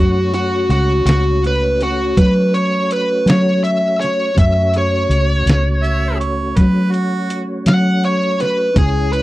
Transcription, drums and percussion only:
0.34 closed hi-hat
0.70 closed hi-hat
1.07 snare, closed hi-hat
1.44 closed hi-hat
1.81 closed hi-hat
2.17 kick, closed hi-hat
2.54 closed hi-hat
2.91 closed hi-hat
3.27 snare, closed hi-hat
3.65 closed hi-hat
4.02 snare, closed hi-hat
4.38 kick, closed hi-hat
4.74 closed hi-hat
5.11 closed hi-hat
5.47 snare, closed hi-hat
5.84 closed hi-hat
6.21 closed hi-hat
6.57 kick, snare, closed hi-hat
6.94 closed hi-hat
7.30 closed hi-hat
7.66 snare, closed hi-hat
8.04 closed hi-hat
8.40 snare, closed hi-hat
8.76 kick, closed hi-hat
9.13 closed hi-hat

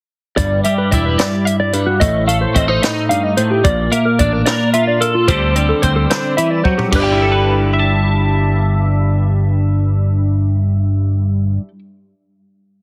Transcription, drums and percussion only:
0.37 kick, closed hi-hat
0.64 closed hi-hat
0.92 kick, closed hi-hat
1.19 snare, closed hi-hat
1.47 closed hi-hat
1.73 closed hi-hat
2.01 kick, closed hi-hat
2.29 closed hi-hat
2.56 kick, closed hi-hat
2.83 snare, closed hi-hat
3.11 closed hi-hat
3.37 closed hi-hat
3.64 kick, closed hi-hat
3.92 closed hi-hat
4.19 kick, closed hi-hat
4.46 snare, closed hi-hat
4.73 closed hi-hat
5.01 closed hi-hat
5.28 kick, closed hi-hat
5.56 closed hi-hat
5.83 kick, closed hi-hat
6.10 snare, closed hi-hat
6.38 closed hi-hat
6.65 kick
6.79 floor tom
6.93 kick, crash

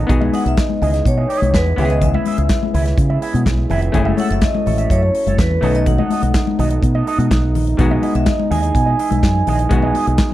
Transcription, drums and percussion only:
0.09 kick, closed hi-hat, muted conga, low conga
0.21 muted conga, high conga
0.33 open hi-hat, high conga
0.46 closed hi-hat, high conga
0.57 kick, snare, clap, closed hi-hat, muted conga
0.70 muted conga, high conga
0.82 open hi-hat, low conga
0.94 snare, closed hi-hat
1.05 kick, closed hi-hat, muted conga
1.18 muted conga
1.30 open hi-hat
1.42 closed hi-hat, high conga
1.54 kick, snare, clap, closed hi-hat, muted conga
1.66 muted conga
1.78 open hi-hat, low conga
1.90 closed hi-hat
2.02 kick, closed hi-hat, low conga
2.14 muted conga, high conga
2.26 open hi-hat, high conga
2.38 closed hi-hat, high conga
2.49 kick, snare, clap, closed hi-hat, muted conga
2.63 muted conga, high conga
2.74 open hi-hat, low conga
2.86 snare, closed hi-hat
2.98 kick, closed hi-hat, muted conga
3.10 muted conga
3.22 open hi-hat
3.34 closed hi-hat, high conga
3.46 kick, snare, clap, closed hi-hat, muted conga
3.58 muted conga
3.70 open hi-hat, low conga
3.82 closed hi-hat
3.94 kick, closed hi-hat, muted conga, low conga
4.05 high conga
4.17 open hi-hat, high conga
4.30 closed hi-hat, high conga
4.42 kick, snare, clap, closed hi-hat, muted conga
4.55 muted conga, high conga
4.66 open hi-hat, low conga
4.78 closed hi-hat
4.90 kick, closed hi-hat, muted conga
5.03 muted conga
5.15 open hi-hat
5.27 closed hi-hat, high conga
5.38 kick, snare, clap, closed hi-hat
5.51 muted conga
5.62 open hi-hat, low conga
5.75 closed hi-hat
5.86 kick, closed hi-hat, muted conga, low conga
5.98 high conga
6.10 open hi-hat, high conga
6.23 closed hi-hat, high conga
6.34 kick, snare, clap, closed hi-hat, muted conga
6.47 muted conga, high conga
6.59 open hi-hat, low conga
6.71 closed hi-hat
6.83 kick, closed hi-hat, muted conga
6.95 muted conga
7.07 open hi-hat
7.19 closed hi-hat, high conga
7.31 kick, snare, clap, closed hi-hat, muted conga
7.43 muted conga
7.55 open hi-hat, low conga
7.67 closed hi-hat
7.79 kick, closed hi-hat, low conga
7.91 muted conga, high conga
8.03 open hi-hat, high conga
8.15 closed hi-hat, high conga
8.26 kick, snare, clap, closed hi-hat, muted conga
8.39 muted conga, high conga
8.52 open hi-hat, low conga
8.63 closed hi-hat
8.75 kick, closed hi-hat, muted conga
8.87 muted conga
8.99 open hi-hat
9.11 closed hi-hat, high conga
9.23 kick, snare, clap, closed hi-hat, muted conga
9.35 muted conga
9.47 open hi-hat, low conga
9.59 closed hi-hat
9.71 kick, closed hi-hat, muted conga, low conga
9.82 muted conga, high conga
9.95 open hi-hat, high conga
10.07 closed hi-hat, high conga
10.18 kick, snare, clap, closed hi-hat, muted conga

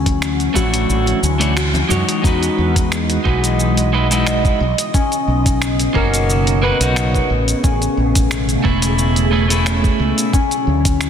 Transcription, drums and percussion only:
0.06 kick, closed hi-hat, high conga, shaker
0.22 finger snap, shaker
0.40 closed hi-hat, shaker
0.55 kick, high conga, shaker
0.74 closed hi-hat, shaker
0.90 shaker
1.06 closed hi-hat, high conga, shaker
1.23 shaker
1.41 closed hi-hat, shaker
1.57 finger snap, shaker
1.74 closed hi-hat, high conga, shaker
1.90 low conga, shaker
2.09 closed hi-hat, shaker
2.24 kick, shaker
2.43 closed hi-hat, shaker
2.76 kick, closed hi-hat, shaker
2.92 finger snap, shaker
3.10 closed hi-hat, shaker
3.26 kick
3.44 closed hi-hat, shaker
3.60 shaker
3.77 closed hi-hat, shaker
4.11 closed hi-hat, shaker
4.27 finger snap, shaker
4.45 kick, shaker
4.78 closed hi-hat, shaker
4.94 kick, shaker
5.12 closed hi-hat, shaker
5.46 kick, closed hi-hat, shaker
5.62 finger snap, shaker
5.79 closed hi-hat, shaker
5.95 kick
6.14 closed hi-hat, shaker
6.30 shaker
6.47 closed hi-hat, shaker
6.81 closed hi-hat, shaker
6.96 finger snap, shaker
7.15 kick, shaker
7.48 closed hi-hat, shaker
7.64 kick, shaker
7.82 closed hi-hat, shaker
8.15 kick, closed hi-hat, shaker
8.31 finger snap, shaker
8.49 closed hi-hat, shaker
8.65 kick
8.82 closed hi-hat, shaker
8.98 shaker
9.16 closed hi-hat, shaker
9.50 closed hi-hat, shaker
9.66 finger snap, shaker
9.84 kick, shaker
10.18 closed hi-hat, shaker
10.33 kick, shaker
10.51 closed hi-hat, shaker
10.85 kick, closed hi-hat, shaker
11.01 finger snap, shaker

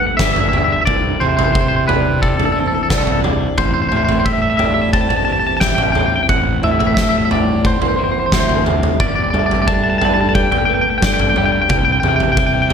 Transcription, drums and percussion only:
0.19 kick, snare
0.36 floor tom
0.53 mid tom
0.87 kick, floor tom
1.21 mid tom
1.39 floor tom
1.55 kick
1.89 floor tom, mid tom
2.23 kick
2.39 floor tom
2.90 kick, snare
3.07 floor tom
3.24 mid tom
3.58 kick, floor tom
3.92 mid tom
4.09 floor tom
4.26 kick
4.59 floor tom, mid tom
4.93 kick
5.10 floor tom
5.61 kick, snare
5.78 floor tom
5.95 mid tom
6.29 kick, floor tom
6.63 mid tom
6.80 floor tom
6.97 kick, snare
7.31 floor tom, mid tom
7.65 kick
7.82 floor tom
8.32 kick, snare
8.49 floor tom
8.66 mid tom
8.83 mid tom
9.00 kick, floor tom
9.34 mid tom
9.51 floor tom
9.68 kick
10.01 floor tom, mid tom
10.35 kick
10.52 floor tom
11.02 kick, snare
11.20 floor tom
11.36 mid tom
11.69 kick, floor tom
12.03 mid tom
12.20 floor tom
12.37 kick

